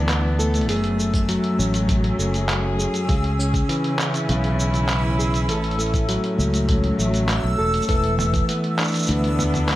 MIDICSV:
0, 0, Header, 1, 6, 480
1, 0, Start_track
1, 0, Tempo, 600000
1, 552, Time_signature, 4, 2, 24, 8
1, 7806, End_track
2, 0, Start_track
2, 0, Title_t, "Synth texture"
2, 0, Program_c, 0, 99
2, 0, Note_on_c, 0, 88, 74
2, 7806, Note_off_c, 0, 88, 0
2, 7806, End_track
3, 0, Start_track
3, 0, Title_t, "Steel-string acoustic guitar"
3, 0, Program_c, 1, 25
3, 0, Note_on_c, 1, 52, 81
3, 0, Note_on_c, 1, 62, 53
3, 0, Note_on_c, 1, 69, 59
3, 69, Note_on_c, 1, 59, 58
3, 307, Note_off_c, 1, 69, 0
3, 311, Note_on_c, 1, 69, 65
3, 549, Note_on_c, 1, 42, 73
3, 551, Note_off_c, 1, 69, 0
3, 554, Note_on_c, 1, 68, 62
3, 598, Note_off_c, 1, 52, 0
3, 598, Note_off_c, 1, 59, 0
3, 600, Note_off_c, 1, 62, 0
3, 790, Note_on_c, 1, 57, 52
3, 1030, Note_on_c, 1, 54, 67
3, 1271, Note_on_c, 1, 61, 56
3, 1501, Note_off_c, 1, 42, 0
3, 1510, Note_on_c, 1, 42, 83
3, 1739, Note_off_c, 1, 57, 0
3, 1749, Note_on_c, 1, 57, 54
3, 1981, Note_off_c, 1, 54, 0
3, 1990, Note_on_c, 1, 54, 61
3, 2225, Note_off_c, 1, 68, 0
3, 2228, Note_on_c, 1, 68, 59
3, 2470, Note_on_c, 1, 49, 78
3, 2472, Note_off_c, 1, 68, 0
3, 2476, Note_on_c, 1, 68, 61
3, 2518, Note_off_c, 1, 57, 0
3, 2519, Note_off_c, 1, 42, 0
3, 2519, Note_off_c, 1, 54, 0
3, 2713, Note_off_c, 1, 61, 0
3, 2713, Note_on_c, 1, 61, 57
3, 2952, Note_on_c, 1, 52, 62
3, 3190, Note_on_c, 1, 64, 57
3, 3420, Note_off_c, 1, 49, 0
3, 3430, Note_on_c, 1, 49, 77
3, 3667, Note_off_c, 1, 61, 0
3, 3670, Note_on_c, 1, 61, 52
3, 3908, Note_off_c, 1, 52, 0
3, 3911, Note_on_c, 1, 52, 62
3, 4141, Note_off_c, 1, 68, 0
3, 4150, Note_on_c, 1, 68, 59
3, 4389, Note_on_c, 1, 45, 76
3, 4390, Note_off_c, 1, 68, 0
3, 4394, Note_on_c, 1, 69, 66
3, 4439, Note_off_c, 1, 49, 0
3, 4624, Note_off_c, 1, 61, 0
3, 4627, Note_on_c, 1, 57, 55
3, 4865, Note_off_c, 1, 52, 0
3, 4868, Note_on_c, 1, 54, 64
3, 4892, Note_off_c, 1, 64, 0
3, 5106, Note_on_c, 1, 61, 56
3, 5338, Note_off_c, 1, 45, 0
3, 5348, Note_on_c, 1, 45, 79
3, 5586, Note_off_c, 1, 57, 0
3, 5589, Note_on_c, 1, 57, 56
3, 5817, Note_off_c, 1, 54, 0
3, 5827, Note_on_c, 1, 54, 58
3, 6064, Note_off_c, 1, 69, 0
3, 6068, Note_on_c, 1, 69, 58
3, 6305, Note_off_c, 1, 54, 0
3, 6308, Note_on_c, 1, 52, 78
3, 6310, Note_off_c, 1, 69, 0
3, 6313, Note_on_c, 1, 69, 65
3, 6357, Note_off_c, 1, 61, 0
3, 6358, Note_off_c, 1, 45, 0
3, 6545, Note_off_c, 1, 57, 0
3, 6548, Note_on_c, 1, 59, 52
3, 6780, Note_off_c, 1, 59, 0
3, 6789, Note_on_c, 1, 59, 69
3, 7028, Note_on_c, 1, 62, 55
3, 7259, Note_off_c, 1, 52, 0
3, 7268, Note_on_c, 1, 52, 75
3, 7499, Note_off_c, 1, 59, 0
3, 7509, Note_on_c, 1, 59, 55
3, 7738, Note_off_c, 1, 59, 0
3, 7748, Note_on_c, 1, 59, 60
3, 7806, Note_off_c, 1, 52, 0
3, 7806, Note_off_c, 1, 59, 0
3, 7806, Note_off_c, 1, 62, 0
3, 7806, Note_off_c, 1, 69, 0
3, 7806, End_track
4, 0, Start_track
4, 0, Title_t, "String quartet"
4, 0, Program_c, 2, 48
4, 0, Note_on_c, 2, 52, 75
4, 0, Note_on_c, 2, 57, 83
4, 0, Note_on_c, 2, 59, 69
4, 0, Note_on_c, 2, 62, 73
4, 548, Note_off_c, 2, 52, 0
4, 548, Note_on_c, 2, 54, 81
4, 550, Note_off_c, 2, 62, 0
4, 950, Note_on_c, 2, 68, 69
4, 1214, Note_on_c, 2, 61, 72
4, 1318, Note_off_c, 2, 59, 0
4, 2470, Note_off_c, 2, 54, 0
4, 2470, Note_on_c, 2, 49, 82
4, 2472, Note_off_c, 2, 57, 0
4, 3340, Note_on_c, 2, 64, 87
4, 4388, Note_on_c, 2, 45, 78
4, 4391, Note_off_c, 2, 49, 0
4, 4392, Note_off_c, 2, 68, 0
4, 5046, Note_on_c, 2, 54, 91
4, 5067, Note_on_c, 2, 57, 73
4, 5162, Note_off_c, 2, 64, 0
4, 6309, Note_off_c, 2, 54, 0
4, 6310, Note_off_c, 2, 45, 0
4, 6310, Note_on_c, 2, 52, 75
4, 6311, Note_off_c, 2, 61, 0
4, 6945, Note_on_c, 2, 59, 77
4, 7174, Note_on_c, 2, 62, 80
4, 7806, Note_off_c, 2, 52, 0
4, 7806, Note_off_c, 2, 57, 0
4, 7806, Note_off_c, 2, 59, 0
4, 7806, Note_off_c, 2, 62, 0
4, 7806, End_track
5, 0, Start_track
5, 0, Title_t, "Fingered electric bass"
5, 0, Program_c, 3, 33
5, 0, Note_on_c, 3, 38, 97
5, 551, Note_off_c, 3, 38, 0
5, 551, Note_on_c, 3, 30, 92
5, 1087, Note_off_c, 3, 30, 0
5, 1272, Note_on_c, 3, 33, 99
5, 1688, Note_off_c, 3, 33, 0
5, 1750, Note_on_c, 3, 30, 69
5, 2286, Note_off_c, 3, 30, 0
5, 2470, Note_on_c, 3, 37, 84
5, 2887, Note_off_c, 3, 37, 0
5, 3432, Note_on_c, 3, 35, 97
5, 4392, Note_off_c, 3, 35, 0
5, 4392, Note_on_c, 3, 33, 91
5, 4927, Note_off_c, 3, 33, 0
5, 5109, Note_on_c, 3, 37, 90
5, 5526, Note_off_c, 3, 37, 0
5, 5589, Note_on_c, 3, 33, 70
5, 5945, Note_off_c, 3, 33, 0
5, 5950, Note_on_c, 3, 35, 78
5, 6030, Note_off_c, 3, 35, 0
5, 6070, Note_on_c, 3, 28, 78
5, 6231, Note_off_c, 3, 28, 0
5, 6309, Note_on_c, 3, 28, 90
5, 6726, Note_off_c, 3, 28, 0
5, 7271, Note_on_c, 3, 38, 90
5, 7806, Note_off_c, 3, 38, 0
5, 7806, End_track
6, 0, Start_track
6, 0, Title_t, "Drums"
6, 71, Note_on_c, 9, 39, 69
6, 71, Note_on_c, 9, 42, 57
6, 78, Note_on_c, 9, 69, 30
6, 151, Note_off_c, 9, 39, 0
6, 151, Note_off_c, 9, 42, 0
6, 158, Note_off_c, 9, 69, 0
6, 317, Note_on_c, 9, 69, 75
6, 397, Note_off_c, 9, 69, 0
6, 431, Note_on_c, 9, 42, 26
6, 438, Note_on_c, 9, 69, 36
6, 491, Note_off_c, 9, 42, 0
6, 491, Note_on_c, 9, 42, 21
6, 518, Note_off_c, 9, 69, 0
6, 551, Note_off_c, 9, 42, 0
6, 551, Note_on_c, 9, 42, 61
6, 558, Note_on_c, 9, 69, 31
6, 611, Note_off_c, 9, 42, 0
6, 611, Note_on_c, 9, 42, 16
6, 638, Note_off_c, 9, 69, 0
6, 670, Note_off_c, 9, 42, 0
6, 670, Note_on_c, 9, 42, 30
6, 750, Note_off_c, 9, 42, 0
6, 796, Note_on_c, 9, 69, 76
6, 876, Note_off_c, 9, 69, 0
6, 910, Note_on_c, 9, 36, 85
6, 910, Note_on_c, 9, 42, 39
6, 916, Note_on_c, 9, 69, 39
6, 990, Note_off_c, 9, 36, 0
6, 990, Note_off_c, 9, 42, 0
6, 996, Note_off_c, 9, 69, 0
6, 1030, Note_on_c, 9, 42, 60
6, 1037, Note_on_c, 9, 69, 29
6, 1110, Note_off_c, 9, 42, 0
6, 1117, Note_off_c, 9, 69, 0
6, 1150, Note_on_c, 9, 42, 30
6, 1230, Note_off_c, 9, 42, 0
6, 1277, Note_on_c, 9, 69, 72
6, 1357, Note_off_c, 9, 69, 0
6, 1391, Note_on_c, 9, 42, 41
6, 1398, Note_on_c, 9, 69, 41
6, 1471, Note_off_c, 9, 42, 0
6, 1478, Note_off_c, 9, 69, 0
6, 1510, Note_on_c, 9, 36, 95
6, 1511, Note_on_c, 9, 42, 63
6, 1517, Note_on_c, 9, 69, 32
6, 1590, Note_off_c, 9, 36, 0
6, 1591, Note_off_c, 9, 42, 0
6, 1597, Note_off_c, 9, 69, 0
6, 1632, Note_on_c, 9, 42, 26
6, 1712, Note_off_c, 9, 42, 0
6, 1757, Note_on_c, 9, 69, 73
6, 1837, Note_off_c, 9, 69, 0
6, 1872, Note_on_c, 9, 42, 30
6, 1879, Note_on_c, 9, 69, 39
6, 1952, Note_off_c, 9, 42, 0
6, 1959, Note_off_c, 9, 69, 0
6, 1992, Note_on_c, 9, 39, 73
6, 1992, Note_on_c, 9, 42, 57
6, 1999, Note_on_c, 9, 69, 30
6, 2072, Note_off_c, 9, 39, 0
6, 2072, Note_off_c, 9, 42, 0
6, 2079, Note_off_c, 9, 69, 0
6, 2238, Note_on_c, 9, 69, 70
6, 2318, Note_off_c, 9, 69, 0
6, 2352, Note_on_c, 9, 42, 26
6, 2359, Note_on_c, 9, 69, 40
6, 2432, Note_off_c, 9, 42, 0
6, 2439, Note_off_c, 9, 69, 0
6, 2470, Note_on_c, 9, 36, 113
6, 2472, Note_on_c, 9, 42, 61
6, 2479, Note_on_c, 9, 69, 33
6, 2550, Note_off_c, 9, 36, 0
6, 2552, Note_off_c, 9, 42, 0
6, 2559, Note_off_c, 9, 69, 0
6, 2593, Note_on_c, 9, 42, 27
6, 2673, Note_off_c, 9, 42, 0
6, 2719, Note_on_c, 9, 69, 76
6, 2799, Note_off_c, 9, 69, 0
6, 2830, Note_on_c, 9, 36, 99
6, 2832, Note_on_c, 9, 42, 36
6, 2839, Note_on_c, 9, 69, 36
6, 2910, Note_off_c, 9, 36, 0
6, 2912, Note_off_c, 9, 42, 0
6, 2919, Note_off_c, 9, 69, 0
6, 2954, Note_on_c, 9, 42, 55
6, 2961, Note_on_c, 9, 69, 31
6, 3034, Note_off_c, 9, 42, 0
6, 3041, Note_off_c, 9, 69, 0
6, 3074, Note_on_c, 9, 42, 27
6, 3154, Note_off_c, 9, 42, 0
6, 3192, Note_on_c, 9, 39, 72
6, 3199, Note_on_c, 9, 69, 78
6, 3272, Note_off_c, 9, 39, 0
6, 3279, Note_off_c, 9, 69, 0
6, 3313, Note_on_c, 9, 42, 36
6, 3320, Note_on_c, 9, 69, 43
6, 3393, Note_off_c, 9, 42, 0
6, 3400, Note_off_c, 9, 69, 0
6, 3433, Note_on_c, 9, 42, 57
6, 3440, Note_on_c, 9, 69, 31
6, 3513, Note_off_c, 9, 42, 0
6, 3520, Note_off_c, 9, 69, 0
6, 3552, Note_on_c, 9, 42, 26
6, 3632, Note_off_c, 9, 42, 0
6, 3678, Note_on_c, 9, 69, 80
6, 3758, Note_off_c, 9, 69, 0
6, 3791, Note_on_c, 9, 42, 29
6, 3798, Note_on_c, 9, 69, 43
6, 3871, Note_off_c, 9, 42, 0
6, 3878, Note_off_c, 9, 69, 0
6, 3911, Note_on_c, 9, 39, 75
6, 3911, Note_on_c, 9, 42, 59
6, 3918, Note_on_c, 9, 69, 31
6, 3991, Note_off_c, 9, 39, 0
6, 3991, Note_off_c, 9, 42, 0
6, 3998, Note_off_c, 9, 69, 0
6, 4157, Note_on_c, 9, 69, 76
6, 4237, Note_off_c, 9, 69, 0
6, 4271, Note_on_c, 9, 42, 27
6, 4278, Note_on_c, 9, 69, 42
6, 4351, Note_off_c, 9, 42, 0
6, 4358, Note_off_c, 9, 69, 0
6, 4390, Note_on_c, 9, 42, 59
6, 4397, Note_on_c, 9, 69, 33
6, 4470, Note_off_c, 9, 42, 0
6, 4477, Note_off_c, 9, 69, 0
6, 4510, Note_on_c, 9, 42, 24
6, 4570, Note_off_c, 9, 42, 0
6, 4570, Note_on_c, 9, 42, 21
6, 4630, Note_off_c, 9, 42, 0
6, 4630, Note_on_c, 9, 42, 17
6, 4637, Note_on_c, 9, 69, 73
6, 4690, Note_off_c, 9, 42, 0
6, 4690, Note_on_c, 9, 42, 14
6, 4717, Note_off_c, 9, 69, 0
6, 4749, Note_off_c, 9, 42, 0
6, 4749, Note_on_c, 9, 36, 91
6, 4749, Note_on_c, 9, 42, 37
6, 4756, Note_on_c, 9, 69, 40
6, 4829, Note_off_c, 9, 36, 0
6, 4829, Note_off_c, 9, 42, 0
6, 4836, Note_off_c, 9, 69, 0
6, 4869, Note_on_c, 9, 42, 59
6, 4876, Note_on_c, 9, 69, 32
6, 4949, Note_off_c, 9, 42, 0
6, 4956, Note_off_c, 9, 69, 0
6, 4991, Note_on_c, 9, 42, 28
6, 5071, Note_off_c, 9, 42, 0
6, 5117, Note_on_c, 9, 69, 71
6, 5197, Note_off_c, 9, 69, 0
6, 5230, Note_on_c, 9, 42, 40
6, 5237, Note_on_c, 9, 69, 43
6, 5310, Note_off_c, 9, 42, 0
6, 5317, Note_off_c, 9, 69, 0
6, 5350, Note_on_c, 9, 36, 98
6, 5350, Note_on_c, 9, 42, 57
6, 5356, Note_on_c, 9, 69, 31
6, 5430, Note_off_c, 9, 36, 0
6, 5430, Note_off_c, 9, 42, 0
6, 5436, Note_off_c, 9, 69, 0
6, 5470, Note_on_c, 9, 42, 27
6, 5550, Note_off_c, 9, 42, 0
6, 5596, Note_on_c, 9, 69, 70
6, 5676, Note_off_c, 9, 69, 0
6, 5710, Note_on_c, 9, 42, 28
6, 5717, Note_on_c, 9, 69, 41
6, 5790, Note_off_c, 9, 42, 0
6, 5797, Note_off_c, 9, 69, 0
6, 5831, Note_on_c, 9, 39, 66
6, 5831, Note_on_c, 9, 42, 60
6, 5838, Note_on_c, 9, 69, 31
6, 5911, Note_off_c, 9, 39, 0
6, 5911, Note_off_c, 9, 42, 0
6, 5918, Note_off_c, 9, 69, 0
6, 6191, Note_on_c, 9, 42, 27
6, 6256, Note_on_c, 9, 69, 41
6, 6271, Note_off_c, 9, 42, 0
6, 6309, Note_on_c, 9, 36, 112
6, 6310, Note_on_c, 9, 42, 57
6, 6317, Note_off_c, 9, 69, 0
6, 6317, Note_on_c, 9, 69, 28
6, 6389, Note_off_c, 9, 36, 0
6, 6390, Note_off_c, 9, 42, 0
6, 6397, Note_off_c, 9, 69, 0
6, 6430, Note_on_c, 9, 42, 27
6, 6510, Note_off_c, 9, 42, 0
6, 6550, Note_on_c, 9, 45, 71
6, 6557, Note_on_c, 9, 69, 70
6, 6630, Note_off_c, 9, 45, 0
6, 6637, Note_off_c, 9, 69, 0
6, 6669, Note_on_c, 9, 36, 96
6, 6670, Note_on_c, 9, 42, 35
6, 6677, Note_on_c, 9, 69, 39
6, 6749, Note_off_c, 9, 36, 0
6, 6750, Note_off_c, 9, 42, 0
6, 6757, Note_off_c, 9, 69, 0
6, 6791, Note_on_c, 9, 42, 59
6, 6798, Note_on_c, 9, 69, 28
6, 6871, Note_off_c, 9, 42, 0
6, 6878, Note_off_c, 9, 69, 0
6, 6912, Note_on_c, 9, 42, 25
6, 6992, Note_off_c, 9, 42, 0
6, 7031, Note_on_c, 9, 39, 74
6, 7038, Note_on_c, 9, 69, 34
6, 7069, Note_off_c, 9, 69, 0
6, 7069, Note_on_c, 9, 69, 39
6, 7100, Note_off_c, 9, 69, 0
6, 7100, Note_on_c, 9, 69, 40
6, 7111, Note_off_c, 9, 39, 0
6, 7130, Note_off_c, 9, 69, 0
6, 7130, Note_on_c, 9, 69, 44
6, 7152, Note_on_c, 9, 42, 39
6, 7159, Note_off_c, 9, 69, 0
6, 7159, Note_on_c, 9, 69, 49
6, 7189, Note_off_c, 9, 69, 0
6, 7189, Note_on_c, 9, 69, 54
6, 7218, Note_off_c, 9, 69, 0
6, 7218, Note_on_c, 9, 69, 57
6, 7232, Note_off_c, 9, 42, 0
6, 7249, Note_off_c, 9, 69, 0
6, 7249, Note_on_c, 9, 69, 60
6, 7270, Note_on_c, 9, 42, 53
6, 7277, Note_off_c, 9, 69, 0
6, 7277, Note_on_c, 9, 69, 29
6, 7350, Note_off_c, 9, 42, 0
6, 7357, Note_off_c, 9, 69, 0
6, 7391, Note_on_c, 9, 42, 25
6, 7471, Note_off_c, 9, 42, 0
6, 7511, Note_on_c, 9, 45, 54
6, 7517, Note_on_c, 9, 69, 76
6, 7591, Note_off_c, 9, 45, 0
6, 7597, Note_off_c, 9, 69, 0
6, 7631, Note_on_c, 9, 42, 26
6, 7631, Note_on_c, 9, 45, 57
6, 7637, Note_on_c, 9, 69, 41
6, 7711, Note_off_c, 9, 42, 0
6, 7711, Note_off_c, 9, 45, 0
6, 7717, Note_off_c, 9, 69, 0
6, 7751, Note_on_c, 9, 39, 68
6, 7751, Note_on_c, 9, 42, 52
6, 7758, Note_on_c, 9, 69, 28
6, 7806, Note_off_c, 9, 39, 0
6, 7806, Note_off_c, 9, 42, 0
6, 7806, Note_off_c, 9, 69, 0
6, 7806, End_track
0, 0, End_of_file